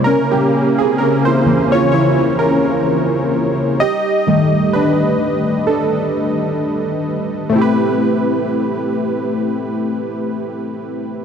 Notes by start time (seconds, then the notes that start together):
Already playing: E4
0.04 C#3 A#3 C#4 A#4
0.32 A#3 G4
0.78 C4 G#4
0.98 C#4 A#4
1.25 E4 C5
1.46 C#3 E3 A#3
1.72 F4 C#5
1.92 E4 C#5
2.39 C#4 A#4
3.80 G4 D#5
4.27 D#3 G3 A3
4.73 D4 B4
5.67 D4 A4
7.49 A3 C4
7.55 E4 G4
7.61 B4